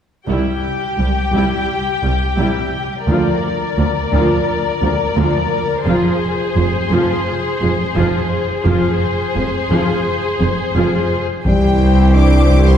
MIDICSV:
0, 0, Header, 1, 9, 480
1, 0, Start_track
1, 0, Tempo, 697674
1, 200, Time_signature, 4, 2, 24, 8
1, 8789, End_track
2, 0, Start_track
2, 0, Title_t, "Violin section"
2, 0, Program_c, 0, 48
2, 7881, Note_on_c, 0, 79, 34
2, 8333, Note_off_c, 0, 79, 0
2, 8362, Note_on_c, 0, 86, 43
2, 8714, Note_off_c, 0, 86, 0
2, 8717, Note_on_c, 0, 84, 37
2, 8789, Note_off_c, 0, 84, 0
2, 8789, End_track
3, 0, Start_track
3, 0, Title_t, "Violin section"
3, 0, Program_c, 1, 48
3, 198, Note_on_c, 1, 79, 28
3, 202, Note_on_c, 1, 67, 27
3, 2092, Note_off_c, 1, 79, 0
3, 2094, Note_off_c, 1, 67, 0
3, 2115, Note_on_c, 1, 74, 30
3, 2118, Note_on_c, 1, 70, 30
3, 4010, Note_off_c, 1, 74, 0
3, 4012, Note_off_c, 1, 70, 0
3, 4039, Note_on_c, 1, 72, 36
3, 4044, Note_on_c, 1, 68, 36
3, 5935, Note_off_c, 1, 68, 0
3, 5951, Note_off_c, 1, 72, 0
3, 5955, Note_on_c, 1, 68, 41
3, 5959, Note_on_c, 1, 72, 41
3, 7713, Note_off_c, 1, 68, 0
3, 7715, Note_off_c, 1, 72, 0
3, 7877, Note_on_c, 1, 67, 29
3, 7879, Note_on_c, 1, 72, 33
3, 8789, Note_off_c, 1, 67, 0
3, 8789, Note_off_c, 1, 72, 0
3, 8789, End_track
4, 0, Start_track
4, 0, Title_t, "French horn section"
4, 0, Program_c, 2, 60
4, 7872, Note_on_c, 2, 55, 47
4, 8329, Note_off_c, 2, 55, 0
4, 8352, Note_on_c, 2, 62, 49
4, 8716, Note_off_c, 2, 62, 0
4, 8723, Note_on_c, 2, 60, 49
4, 8789, Note_off_c, 2, 60, 0
4, 8789, End_track
5, 0, Start_track
5, 0, Title_t, "Viola section"
5, 0, Program_c, 3, 48
5, 194, Note_on_c, 3, 64, 34
5, 197, Note_on_c, 3, 55, 37
5, 420, Note_off_c, 3, 64, 0
5, 422, Note_off_c, 3, 55, 0
5, 678, Note_on_c, 3, 55, 22
5, 733, Note_off_c, 3, 55, 0
5, 920, Note_on_c, 3, 64, 31
5, 921, Note_on_c, 3, 55, 36
5, 1143, Note_off_c, 3, 64, 0
5, 1144, Note_off_c, 3, 55, 0
5, 1402, Note_on_c, 3, 55, 26
5, 1457, Note_off_c, 3, 55, 0
5, 1635, Note_on_c, 3, 64, 28
5, 1639, Note_on_c, 3, 55, 30
5, 1861, Note_off_c, 3, 64, 0
5, 1863, Note_off_c, 3, 55, 0
5, 2122, Note_on_c, 3, 65, 37
5, 2124, Note_on_c, 3, 53, 36
5, 2344, Note_off_c, 3, 65, 0
5, 2346, Note_off_c, 3, 53, 0
5, 2595, Note_on_c, 3, 53, 28
5, 2597, Note_on_c, 3, 58, 29
5, 2650, Note_off_c, 3, 53, 0
5, 2652, Note_off_c, 3, 58, 0
5, 2841, Note_on_c, 3, 65, 40
5, 2845, Note_on_c, 3, 53, 41
5, 3064, Note_off_c, 3, 65, 0
5, 3066, Note_off_c, 3, 53, 0
5, 3314, Note_on_c, 3, 53, 33
5, 3319, Note_on_c, 3, 58, 30
5, 3369, Note_off_c, 3, 53, 0
5, 3374, Note_off_c, 3, 58, 0
5, 3557, Note_on_c, 3, 53, 34
5, 3557, Note_on_c, 3, 65, 36
5, 3782, Note_off_c, 3, 53, 0
5, 3782, Note_off_c, 3, 65, 0
5, 4036, Note_on_c, 3, 65, 42
5, 4038, Note_on_c, 3, 53, 48
5, 4261, Note_off_c, 3, 65, 0
5, 4262, Note_off_c, 3, 53, 0
5, 4515, Note_on_c, 3, 53, 29
5, 4518, Note_on_c, 3, 56, 27
5, 4571, Note_off_c, 3, 53, 0
5, 4573, Note_off_c, 3, 56, 0
5, 4757, Note_on_c, 3, 53, 44
5, 4757, Note_on_c, 3, 65, 44
5, 4982, Note_off_c, 3, 53, 0
5, 4982, Note_off_c, 3, 65, 0
5, 5237, Note_on_c, 3, 53, 34
5, 5238, Note_on_c, 3, 56, 35
5, 5292, Note_off_c, 3, 53, 0
5, 5293, Note_off_c, 3, 56, 0
5, 5466, Note_on_c, 3, 53, 45
5, 5467, Note_on_c, 3, 65, 40
5, 5696, Note_off_c, 3, 53, 0
5, 5696, Note_off_c, 3, 65, 0
5, 5947, Note_on_c, 3, 53, 49
5, 5949, Note_on_c, 3, 65, 46
5, 6176, Note_off_c, 3, 53, 0
5, 6178, Note_off_c, 3, 65, 0
5, 6431, Note_on_c, 3, 53, 28
5, 6431, Note_on_c, 3, 56, 31
5, 6486, Note_off_c, 3, 53, 0
5, 6486, Note_off_c, 3, 56, 0
5, 6679, Note_on_c, 3, 53, 47
5, 6680, Note_on_c, 3, 65, 38
5, 6903, Note_off_c, 3, 53, 0
5, 6903, Note_off_c, 3, 65, 0
5, 7156, Note_on_c, 3, 56, 32
5, 7158, Note_on_c, 3, 53, 26
5, 7211, Note_off_c, 3, 56, 0
5, 7213, Note_off_c, 3, 53, 0
5, 7393, Note_on_c, 3, 53, 35
5, 7394, Note_on_c, 3, 65, 40
5, 7620, Note_off_c, 3, 53, 0
5, 7620, Note_off_c, 3, 65, 0
5, 7876, Note_on_c, 3, 67, 37
5, 7877, Note_on_c, 3, 64, 37
5, 8789, Note_off_c, 3, 64, 0
5, 8789, Note_off_c, 3, 67, 0
5, 8789, End_track
6, 0, Start_track
6, 0, Title_t, "Trombone section"
6, 0, Program_c, 4, 61
6, 7864, Note_on_c, 4, 52, 40
6, 7869, Note_on_c, 4, 55, 38
6, 8789, Note_off_c, 4, 52, 0
6, 8789, Note_off_c, 4, 55, 0
6, 8789, End_track
7, 0, Start_track
7, 0, Title_t, "Cello section"
7, 0, Program_c, 5, 48
7, 193, Note_on_c, 5, 36, 30
7, 248, Note_off_c, 5, 36, 0
7, 672, Note_on_c, 5, 36, 22
7, 727, Note_off_c, 5, 36, 0
7, 916, Note_on_c, 5, 36, 34
7, 971, Note_off_c, 5, 36, 0
7, 1395, Note_on_c, 5, 36, 23
7, 1450, Note_off_c, 5, 36, 0
7, 1634, Note_on_c, 5, 36, 37
7, 1689, Note_off_c, 5, 36, 0
7, 2119, Note_on_c, 5, 38, 37
7, 2174, Note_off_c, 5, 38, 0
7, 2604, Note_on_c, 5, 38, 28
7, 2659, Note_off_c, 5, 38, 0
7, 2842, Note_on_c, 5, 38, 39
7, 2897, Note_off_c, 5, 38, 0
7, 3321, Note_on_c, 5, 38, 31
7, 3376, Note_off_c, 5, 38, 0
7, 3554, Note_on_c, 5, 38, 47
7, 3609, Note_off_c, 5, 38, 0
7, 4033, Note_on_c, 5, 41, 43
7, 4088, Note_off_c, 5, 41, 0
7, 4514, Note_on_c, 5, 41, 33
7, 4569, Note_off_c, 5, 41, 0
7, 4753, Note_on_c, 5, 41, 45
7, 4808, Note_off_c, 5, 41, 0
7, 5236, Note_on_c, 5, 41, 31
7, 5291, Note_off_c, 5, 41, 0
7, 5475, Note_on_c, 5, 41, 46
7, 5530, Note_off_c, 5, 41, 0
7, 5954, Note_on_c, 5, 41, 48
7, 6009, Note_off_c, 5, 41, 0
7, 6432, Note_on_c, 5, 41, 32
7, 6487, Note_off_c, 5, 41, 0
7, 6673, Note_on_c, 5, 41, 42
7, 6728, Note_off_c, 5, 41, 0
7, 7155, Note_on_c, 5, 41, 26
7, 7210, Note_off_c, 5, 41, 0
7, 7398, Note_on_c, 5, 41, 36
7, 7453, Note_off_c, 5, 41, 0
7, 7874, Note_on_c, 5, 36, 36
7, 8789, Note_off_c, 5, 36, 0
7, 8789, End_track
8, 0, Start_track
8, 0, Title_t, "Double bass section"
8, 0, Program_c, 6, 48
8, 197, Note_on_c, 6, 36, 30
8, 252, Note_off_c, 6, 36, 0
8, 683, Note_on_c, 6, 36, 25
8, 738, Note_off_c, 6, 36, 0
8, 922, Note_on_c, 6, 36, 32
8, 977, Note_off_c, 6, 36, 0
8, 1406, Note_on_c, 6, 36, 27
8, 1461, Note_off_c, 6, 36, 0
8, 1643, Note_on_c, 6, 36, 37
8, 1698, Note_off_c, 6, 36, 0
8, 2127, Note_on_c, 6, 38, 36
8, 2182, Note_off_c, 6, 38, 0
8, 2601, Note_on_c, 6, 38, 29
8, 2656, Note_off_c, 6, 38, 0
8, 2847, Note_on_c, 6, 38, 37
8, 2902, Note_off_c, 6, 38, 0
8, 3321, Note_on_c, 6, 38, 29
8, 3376, Note_off_c, 6, 38, 0
8, 3562, Note_on_c, 6, 38, 40
8, 3617, Note_off_c, 6, 38, 0
8, 4045, Note_on_c, 6, 29, 43
8, 4100, Note_off_c, 6, 29, 0
8, 4525, Note_on_c, 6, 29, 35
8, 4581, Note_off_c, 6, 29, 0
8, 4762, Note_on_c, 6, 29, 44
8, 4818, Note_off_c, 6, 29, 0
8, 5242, Note_on_c, 6, 29, 33
8, 5297, Note_off_c, 6, 29, 0
8, 5487, Note_on_c, 6, 29, 45
8, 5542, Note_off_c, 6, 29, 0
8, 5966, Note_on_c, 6, 29, 45
8, 6021, Note_off_c, 6, 29, 0
8, 6446, Note_on_c, 6, 29, 33
8, 6501, Note_off_c, 6, 29, 0
8, 6684, Note_on_c, 6, 29, 41
8, 6739, Note_off_c, 6, 29, 0
8, 7160, Note_on_c, 6, 29, 26
8, 7215, Note_off_c, 6, 29, 0
8, 7396, Note_on_c, 6, 29, 34
8, 7451, Note_off_c, 6, 29, 0
8, 7881, Note_on_c, 6, 36, 34
8, 8789, Note_off_c, 6, 36, 0
8, 8789, End_track
9, 0, Start_track
9, 0, Title_t, "Taiko and cinematic ensemble drums"
9, 7876, Note_on_c, 9, 41, 36
9, 7945, Note_off_c, 9, 41, 0
9, 8599, Note_on_c, 9, 41, 25
9, 8668, Note_off_c, 9, 41, 0
9, 8789, End_track
0, 0, End_of_file